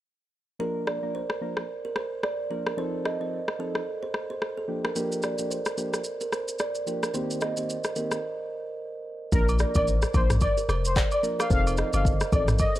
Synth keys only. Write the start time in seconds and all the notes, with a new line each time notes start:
0.59 F3 A#3 D4 A#4
1.02 F3 A#3 D4 A#4
1.41 F3 A#3 D4 A#4
2.50 F3 A#3 D4 A#4
2.77 F3 C4 D#4 A4
3.20 F3 C4 D#4 A4
3.59 F3 C4 D#4 A4
4.68 F3 A#3 D4 G4
4.95 F3 A#3 D4 G4
5.39 F3 A#3 D4 G4
5.77 F3 A#3 D4 G4
6.87 F3 A#3 D4 G4
7.14 D#3 A#3 C4 G4
7.57 D#3 A#3 C4 G4
7.96 D#3 A#3 C4 G4
9.32 F3 A#3 D4 A#4
9.75 F3 A#3 D4 A#4
10.14 F3 A#3 D4 A#4
11.23 F3 A#3 D4 A#4
11.50 F3 C4 D#4 A4
11.93 F3 C4 D#4 A4
12.32 F3 C4 D#4 A4